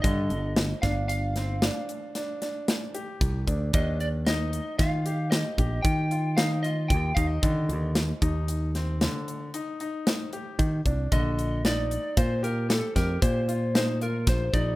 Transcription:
<<
  \new Staff \with { instrumentName = "Lead electric guitar" } { \time 7/4 \key ees \major \tempo 4 = 114 ees''4. f''8 f''4. r2. r8 | ees''8 d''8 ees''4 f''4 ees''4 g''4 f''8 ees''8 g''8 f''16 ees''16~ | ees''2.~ ees''8. r2. r16 | ees''4 d''4 c''8 bes'8 a'8 bes'8 c''4 c''8 bes'8 c''8 d''8 | }
  \new Staff \with { instrumentName = "Grand piano" } { \time 7/4 \key ees \major d4 r8 d'4 c'8 d'4 d'8 d'4 g'4 d'8 | d'4 ees'4 f'8 g'4 g'4 f'8 ees'8 f'4 ees'8 | d4 r8 ees'4 c'8 d4 ees'8 ees'4 g'4 d'8 | d4 ees'4 f'8 g'4 g'4 f'8 ees'8 f'4 ees'8 | }
  \new Staff \with { instrumentName = "Picked electric bass" } { \clef bass \time 7/4 \key ees \major g,8 g,,4 g,,2 r2 r8 c,8 d,8 | ees,2 ees4. bes,,8 ees2 ees,8 ees,8 | ees8 ees,4 ees,2 r2 r8 ees8 c,8 | bes,,2 bes,4. f,8 bes,2 bes,,8 bes,,8 | }
  \new DrumStaff \with { instrumentName = "Drums" } \drummode { \time 7/4 <hh bd>8 hh8 <hh sn>8 <hh bd sn>8 hh8 <hh sn>8 <hh sn>8 hh8 <hh sn>8 <hh sn>8 <hh sn>8 hh8 <hh bd>8 <hh bd>8 | <hh bd>8 hh8 <hh sn>8 hh8 <hh bd sn>8 hh8 <hh sn>8 <hh bd>8 <hh bd>8 hh8 <hh sn>8 hh8 <hh bd>8 <hh bd>8 | <hh bd>8 hh8 <hh sn>8 <hh bd>8 hh8 <hh sn>8 <hh sn>8 hh8 hh8 hh8 <hh sn>8 hh8 <hh bd>8 <hh bd>8 | <hh bd>8 hh8 <hh sn>8 hh8 <hh bd>8 hh8 <hh sn>8 <hh bd sn>8 <hh bd>8 hh8 <hh sn>8 hh8 <hh bd sn>8 <hh bd>8 | }
>>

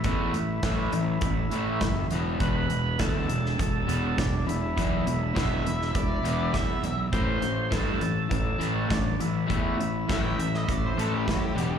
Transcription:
<<
  \new Staff \with { instrumentName = "Lead electric guitar" } { \time 4/4 \key e \minor \tempo 4 = 102 r1 | r1 | r4 e''4 d''4 e''8. r16 | r1 |
r4 g''8 e''16 dis''16 d''16 c''16 a'16 g'16 g'8. r16 | }
  \new Staff \with { instrumentName = "Tonewheel organ" } { \time 4/4 \key e \minor e'2.~ e'8 r8 | b'4 a'4 a'4 d'8 e'8~ | e'2.~ e'8 r8 | c''4 a'4 a'4 d'8 e'8~ |
e'2.~ e'8 r8 | }
  \new Staff \with { instrumentName = "Overdriven electric guitar" } { \clef bass \time 4/4 \key e \minor <a, e a>8 <a, e>8 <a, e a>8 <a, e>8 <a, e>8 <a, e a>8 <a, e>8 <e, b, e>8 | <e, b, e>8 <e, b,>8 <e, b, e>8 <e, b,>8 <e, b,>8 <e, b, e>8 <e, b,>8 <e, b,>8 | <e, b, e>8 <e, b,>8 <e, b, e>8 <e, b,>8 <e, b,>8 <e, b, e>8 <e, b,>8 <e, b,>8 | <a, e a>8 <a, e>8 <a, e a>8 <a, e>8 <a, e>8 <a, e a>8 <a, e>8 <a, e>8 |
<a, e a>8 <a, e>8 <a, e a>8 <a, e>8 <a, e>8 <a, e a>8 <a, e>8 <e, b, e>8 | }
  \new Staff \with { instrumentName = "Overdriven electric guitar" } { \clef bass \time 4/4 \key e \minor <a, e a>8 <a, e>8 <a, e a>8 <a, e>8 <a, e>8 <a, e a>8 <a, e>8 <e, b, e>8 | <e, b, e>8 <e, b,>8 <e, b, e>8 <e, b,>8 <e, b,>8 <e, b, e>8 <e, b,>8 <e, b,>8 | <e, b, e>8 <e, b,>8 <e, b, e>8 <e, b,>8 <e, b,>8 <e, b, e>8 <e, b,>8 <e, b,>8 | <a, e a>8 <a, e>8 <a, e a>8 <a, e>8 <a, e>8 <a, e a>8 <a, e>8 <a, e>8 |
<a, e a>8 <a, e>8 <a, e a>8 <a, e>8 <a, e>8 <a, e a>8 <a, e>8 <e, b, e>8 | }
  \new Staff \with { instrumentName = "Fingered electric bass" } { \clef bass \time 4/4 \key e \minor e,8 a,,8 a,,8 a,,8 a,,8 a,,8 fis,,8 e,,8 | e,,8 e,,8 d,8 e,,8 e,,8 e,,8 e,,8 e,,8 | b,,8 e,,8 e,,8 e,,8 e,,8 e,,8 e,8 b,,8 | a,,8 a,,8 g,8 a,,8 a,,8 a,,8 a,,8 a,,8 |
e,8 a,,8 a,,8 a,,8 a,,8 a,,8 a,8 e,,8 | }
  \new DrumStaff \with { instrumentName = "Drums" } \drummode { \time 4/4 <hh bd>8 hh8 <hh bd sn>8 hh8 <hh bd>8 hh8 <hh bd sn>8 hh8 | <hh bd>8 hh8 <hh bd sn>8 hh16 sn16 <hh bd>8 hh8 <hh bd sn>8 hh8 | <hh bd>8 hh8 <hh bd sn>8 hh16 sn16 <hh bd>8 hh8 <hh bd sn>8 hh8 | <hh bd>8 hh8 <hh bd sn>8 hh8 <hh bd>8 hh8 <hh bd sn>8 hh8 |
<hh bd>8 hh8 <hh bd sn>8 hh16 sn16 <hh bd>8 hh8 <hh bd sn>8 hh8 | }
>>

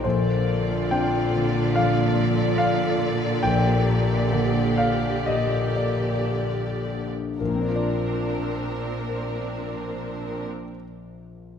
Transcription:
<<
  \new Staff \with { instrumentName = "Violin section" } { \time 4/4 \key bes \major \tempo 4 = 62 d''1~ | d''2.~ d''8. r16 | bes'1 | }
  \new Staff \with { instrumentName = "Grand piano" } { \time 4/4 \key bes \major c''4 g''4 f''4 f''4 | g''4. f''8 ees''8 d''8 r4 | <bes,, bes, c' d' f' bes' d''>1 | }
  \new Staff \with { instrumentName = "Grand piano" } { \time 4/4 \key bes \major bes,,4 <c' d' f'>2. | bes,,4 <d bes g'>2. | r1 | }
  \new Staff \with { instrumentName = "Viola section" } { \time 4/4 \key bes \major << { f'1 | g'2.~ g'8. r16 | d'1 | } \\ { d1~ | d2.~ d8. r16 | c'1 | } >> }
  \new Staff \with { instrumentName = "Harp" } { \time 4/4 \key bes \major c'1 | r1 | <bes, bes c' d' f' d''>1 | }
  \new Staff \with { instrumentName = "Harp" } { \time 4/4 \key bes \major bes,8 c'8 f'8 d8 f8 c'8 f'4 | bes,8 bes8 g'4 bes,8 bes8 g'8 d'8~ | d'1 | }
  \new Staff \with { instrumentName = "Cello section" } { \clef bass \time 4/4 \key bes \major bes,1~ | bes,2.~ bes,8. r16 | bes,1 | }
>>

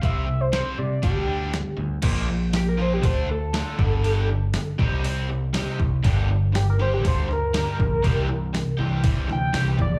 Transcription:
<<
  \new Staff \with { instrumentName = "Analog synth lead" } { \time 4/4 \key g \minor \tempo 4 = 120 e''8. c''16 c''8 d''8 g'4. r8 | r4 g'16 bes'16 c''16 g'16 c''8 a'4.~ | a'4. r2 r8 | r4 g'16 bes'16 c''16 g'16 c''8 bes'4.~ |
bes'4. r4 g''4 d''16 d''16 | }
  \new Staff \with { instrumentName = "Overdriven electric guitar" } { \time 4/4 \key g \minor r1 | <f bes c' f'>8 r4 <f bes c' f'>8 r4 <d a d' f'>8 r8 | <g bes d' g'>8 r4 <g c' ees' g'>8 r4 <g c' ees' g'>8 r8 | <g bes d' g'>8 r4 <g bes d' g'>8 r4 <g bes d' g'>8 r8 |
<e g c' g'>8 r4 <e g c' g'>8 r4 <e g c' g'>8 r8 | }
  \new Staff \with { instrumentName = "Overdriven electric guitar" } { \clef bass \time 4/4 \key g \minor <c g c'>8 <c g>8 <c g c'>8 <c g>8 <d g d'>8 <d g d'>8 <d g>8 <d g>8 | <bes, f bes>8 <bes, f>8 <bes, f>8 <bes, f>8 <d a d'>8 <d a>8 <d a>8 <g, d g>8 | <g, d g>8 <g, d>8 <g, d>8 <c g c'>8 <c g c'>8 <c g>8 <c g>8 <c g>8 | <g, d g>8 <g, d>8 <g, d>8 <g, d>8 <g, d g>8 <g, d>8 <g, d>8 <g, d>8 |
<c e g>8 <c e>8 <c e>8 <c e>8 <c e g>8 <c e>8 <c e>8 <c e>8 | }
  \new Staff \with { instrumentName = "Picked electric bass" } { \clef bass \time 4/4 \key g \minor c,4. c8 d,4. d,8 | bes,,2 d,4. g,,8~ | g,,4. c,2 c,8 | g,,2 d,4. bes,,8 |
c,4. c,4 d,8 c,8 bes,,8 | }
  \new DrumStaff \with { instrumentName = "Drums" } \drummode { \time 4/4 <hho bd>4 <hho sn>4 <hho bd>4 <hho sn>4 | <cymc hho bd>4 <hho sn>8 sn8 <hho bd>4 <hho sn>8 bd8 | hho4 <hho sn>8 bd8 hho4 <hho sn>8 bd8 | <hho bd>4 <hho sn>8 sn8 <hho bd>8 sn8 <hho sn>8 bd8 |
<hho bd>4 <hho sn>4 <hho bd>8 sn8 <hho sn>8 bd8 | }
>>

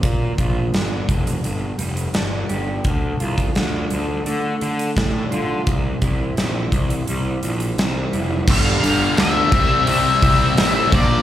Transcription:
<<
  \new Staff \with { instrumentName = "Lead electric guitar" } { \time 4/4 \key g \dorian \tempo 4 = 85 r1 | r1 | r1 | f''4 e''4 e''4. d''8 | }
  \new Staff \with { instrumentName = "Clean electric guitar" } { \time 4/4 \key g \dorian bes,8 f'8 d'8 d8 g,8 g8 d'8 g'8 | d8 f'8 d'8 d8 a8 d8 d'8 f'8 | c8 e'8 c'8 e8 g8 e8 c'8 e'8 | r1 | }
  \new Staff \with { instrumentName = "Distorted electric guitar" } { \clef bass \time 4/4 \key g \dorian r1 | r1 | r1 | <g, d g>8 <g, d g>8 <g, d g>8 <c g c'>8 <c g c'>8 <c g c'>8 <c g c'>8 <bes, f bes>8 | }
  \new Staff \with { instrumentName = "Picked electric bass" } { \clef bass \time 4/4 \key g \dorian bes,8 bes,,8 g,,8 f,,8 g,,8 f,,8 g,,8 g,,8 | d,8 c,8 d,8 d,8 d8 d8 a,8 d8 | c,8 c,8 bes,,8 c,8 c,8 bes,,8 c,8 f,,8 | g,,8 g,,8 d,8 c,8 c,8 c,8 a,,8 bes,,8 | }
  \new DrumStaff \with { instrumentName = "Drums" } \drummode { \time 4/4 <hh bd>8 <hh bd>8 <hh sn>8 <hh bd>16 hh16 hh8 hh16 hh16 <hh sn>8 hh8 | <hh bd>8 hh16 <hh bd>16 <hh sn>8 hh8 hh8 hh16 hh16 <hh bd sn>8 hh8 | <hh bd>8 <hh bd>8 <hh sn>8 <hh bd>16 hh16 hh8 hh16 hh16 <hh sn>8 hh8 | <cymc bd>8 hho8 <hho sn>8 <hho bd>8 hho8 <hho bd>8 <hho sn>8 <hho bd>8 | }
>>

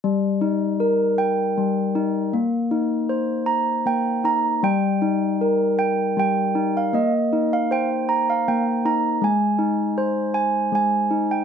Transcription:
\new Staff \with { instrumentName = "Handbells" } { \time 3/4 \key ees \major \tempo 4 = 78 << { r2. | r2 g''8 bes''8 | g''2 g''8. f''16 | ees''8. f''16 g''8. f''16 g''8 bes''8 |
aes''4. r8 aes''8. g''16 | } \\ { g8 ees'8 bes'8 g''8 g8 ees'8 | bes8 ees'8 c''8 bes''8 bes8 ees'8 | g8 ees'8 bes'8 g''8 g8 ees'8 | bes8 ees'8 c''8 bes''8 bes8 ees'8 |
aes8 ees'8 c''8 aes''8 aes8 ees'8 | } >> }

